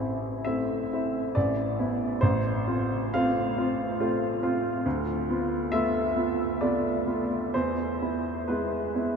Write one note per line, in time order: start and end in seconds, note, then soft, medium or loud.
0.00 1.36 A1 soft
0.00 0.41 C4 soft
0.00 0.41 E4 soft
0.45 0.88 A3 soft
0.45 0.88 C4 soft
0.45 0.88 E4 soft
0.45 1.35 E5 medium
0.93 1.32 C4 soft
0.93 1.32 E4 soft
1.35 1.78 A1 soft
1.35 2.21 D5 medium
1.79 2.18 B3 soft
1.79 2.18 E4 soft
2.21 2.66 A1 medium
2.21 3.13 C5 medium
2.67 3.09 C4 soft
2.67 3.09 F4 soft
3.14 3.53 A3 soft
3.14 3.53 C4 soft
3.14 3.53 F4 soft
3.14 4.42 F5 medium
3.58 3.96 C4 soft
3.58 3.96 F4 soft
4.00 4.38 A3 soft
4.00 4.39 C4 soft
4.00 4.38 F4 soft
4.43 4.81 C4 soft
4.43 4.82 F4 soft
4.86 5.27 D2 medium
5.30 5.68 B3 soft
5.30 5.69 F4 soft
5.72 6.12 A3 soft
5.72 6.13 B3 soft
5.72 6.13 F4 soft
5.72 6.60 E5 medium
6.16 6.57 B3 soft
6.16 6.57 F4 soft
6.61 7.02 A3 soft
6.61 7.03 B3 soft
6.61 7.03 F4 soft
6.61 7.53 D5 soft
7.07 7.49 B3 soft
7.07 7.49 F4 soft
7.54 8.00 E2 soft
7.54 8.48 C5 medium
8.02 8.45 B3 soft
8.02 8.45 E4 soft
8.48 8.92 G#3 soft
8.48 8.92 B3 soft
8.48 8.92 E4 soft
8.48 9.16 B4 soft
8.95 9.16 B3 soft
8.95 9.16 E4 soft